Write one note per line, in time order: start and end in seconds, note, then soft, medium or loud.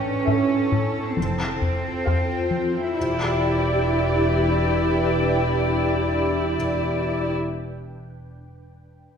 0.00 1.13 C#4 soft
0.00 1.17 E4 soft
0.00 1.17 A4 soft
0.00 1.17 A5 soft
0.27 0.54 A2 soft
0.27 0.95 A4 soft
0.27 0.95 E5 soft
0.72 0.99 A2 medium
1.17 1.89 F1 soft
1.17 1.44 F3 soft
1.17 2.96 C4 soft
1.17 2.96 F4 soft
1.17 2.96 C5 soft
1.17 2.96 G5 soft
1.62 1.89 F2 soft
2.06 2.34 F2 medium
2.06 2.74 G4 soft
2.06 2.74 C5 soft
2.06 2.74 F5 soft
2.51 2.78 F3 soft
2.95 7.31 E1 soft
2.95 7.30 D4 soft
2.95 7.30 E4 soft
2.95 7.30 G4 soft
2.95 7.30 B4 soft
2.95 7.30 D5 soft
2.95 7.31 G5 soft